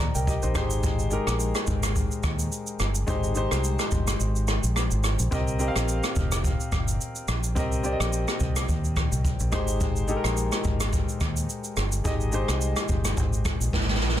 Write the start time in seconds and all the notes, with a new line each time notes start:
Already playing: C4 G4 A#4 D#5
0.00 D5 A#5
0.15 C2 A#4 G5, shaker
0.27 G4 D#5, kick, shaker
0.42 A#1 D#4 C5, shaker
0.54 G#1 G#3 D#4 G4 C5, kick, cross-stick, shaker
0.70 shaker
0.83 kick, shaker
0.99 shaker
1.10 G#3 D#4 G4 A#4, shaker
1.27 A#1, cross-stick, shaker
1.40 shaker
1.55 cross-stick, shaker
1.67 G#1, kick, shaker
1.83 cross-stick, shaker
1.96 kick, shaker
2.11 shaker
2.23 D#2, kick, cross-stick, shaker
2.39 shaker
2.52 shaker
2.67 shaker
2.79 G1, cross-stick, shaker
2.95 shaker
3.06 G#1 G#3 D#4 G4 C5, kick, shaker
3.23 shaker
3.35 G#3 D#4 G4 C5, shaker
3.51 C2, cross-stick, shaker
3.64 shaker
3.79 cross-stick, shaker
3.91 G1, kick, shaker
4.07 cross-stick, shaker
4.20 G#1, shaker
4.36 shaker
4.48 cross-stick, shaker
4.63 A#1, shaker
4.76 cross-stick, shaker
4.91 G#1, shaker
5.04 cross-stick, shaker
5.19 A#1, shaker
5.31 C2 C4 G4 A#4 D#5, kick, shaker
5.48 shaker
5.59 C4 G4 A#4 D#5, shaker
5.68 F5
5.76 A#1, cross-stick, shaker
5.88 shaker
6.04 cross-stick, shaker
6.15 F1, kick, shaker
6.32 cross-stick, shaker
6.44 kick, shaker
6.60 shaker
6.72 G1, kick, cross-stick, shaker
6.88 shaker
7.01 shaker
7.15 shaker
7.28 A#1, cross-stick, shaker
7.44 shaker
7.55 C2 C4 G4 A#4 D#5, kick, shaker
7.72 shaker
7.83 C4 G4 A#4 D5, shaker
7.92 D#5
8.00 A#1, cross-stick, shaker
8.13 shaker
8.28 cross-stick, shaker
8.40 C2, kick, shaker
8.56 cross-stick, shaker
8.69 D#2, kick, shaker
8.84 shaker
8.96 kick, cross-stick, shaker
9.12 C2, shaker
9.25 kick, shaker
9.40 A#1, shaker
9.52 G#1 G#3 D#4 G4 C5, kick, cross-stick, shaker
9.68 shaker
9.81 kick, shaker
9.96 shaker
10.08 G#3 D#4 G4 A4, shaker
10.17 A#4
10.24 A#1, cross-stick, shaker
10.37 shaker
10.52 cross-stick, shaker
10.64 G#1, kick, shaker
10.80 cross-stick, shaker
10.93 kick, shaker
11.09 shaker
11.21 D#2, kick, cross-stick, shaker
11.37 shaker
11.50 shaker
11.64 shaker
11.77 G1, cross-stick, shaker
11.92 shaker
12.04 G#1 G#3 D#4 G4 D#5, kick, shaker
12.21 shaker
12.32 G#3 D#4 G4 C5, shaker
12.48 C2, cross-stick, shaker
12.61 shaker
12.76 cross-stick, shaker
12.88 G1, kick, shaker
13.05 cross-stick, shaker
13.17 G#1, kick, shaker
13.33 shaker
13.45 kick, cross-stick, shaker
13.61 A#1, shaker
13.73 G#1, kick, snare
13.81 snare
13.89 snare
13.95 snare
14.01 A#1, snare
14.09 snare
14.17 snare